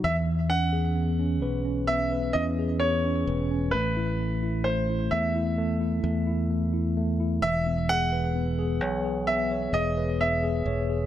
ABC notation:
X:1
M:4/4
L:1/16
Q:1/4=65
K:E
V:1 name="Grand piano"
e2 f6 e2 d2 c4 | B4 =c2 e8 z2 | e2 f6 e2 d2 e4 |]
V:2 name="Tine electric piano"
E, B, C G B, C B C B, B C G B, C B C | A, E A, E A, E A, E A, E A, E A, E A, E | E, B, G B B, G c G B, c G B B, G c G |]
V:3 name="Fingered electric bass" clef=bass
E,,6 B,,,4 E,,4 E,,,2 | A,,,6 E,,4 E,,6 | E,,,6 B,,,4 E,,,4 E,,,2 |]